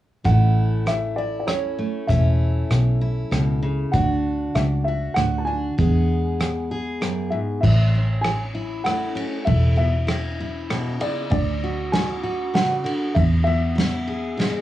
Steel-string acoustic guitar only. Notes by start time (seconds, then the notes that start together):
0.25 A2 A3 C#4 E4
0.86 E3
1.18 E4
1.47 E2 C#4
1.79 A3
2.09 A2 A3 C#4 E4
2.70 E3
3.01 E4
3.31 B2
3.62 C#3
3.93 D3 D4 F#4
4.55 A3
4.88 F#4
5.17 A2 F#4
5.47 D4
5.78 E2 G#3 B3 G#4
6.40 E3
6.71 G#4
7.01 F#2
7.32 G#2
7.64 A2
7.95 C#4
8.24 E3
8.55 E4
8.85 E2 A3
9.15 C#4
9.46 A2
9.76 B3
10.07 E3
10.40 E4
10.70 B2
11.00 C#3
11.30 D3
11.64 F#4
11.94 A3
12.23 F#4
12.54 C#3
12.84 D3
13.15 E2
13.47 B3
13.76 E3
14.08 G#4
14.38 B2 G#3